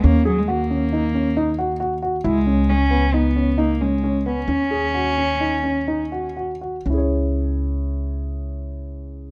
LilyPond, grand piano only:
\new Staff \with { instrumentName = "Grand piano" } { \time 5/4 \key cis \dorian \tempo 4 = 132 cis'8 gis'8 fis'8 cis'8 dis'8 cis'8 dis'8 fis'8 fis'8 fis'8 | e'8 cis'8 cis'8 b8 dis'8 cis'8 dis'8 cis'8 cis'8 b8 | cis'8 gis'8 fis'8 cis'8 dis'8 cis'8 dis'8 fis'8 fis'8 fis'8 | <cis' e' gis' cis''>1~ <cis' e' gis' cis''>4 | }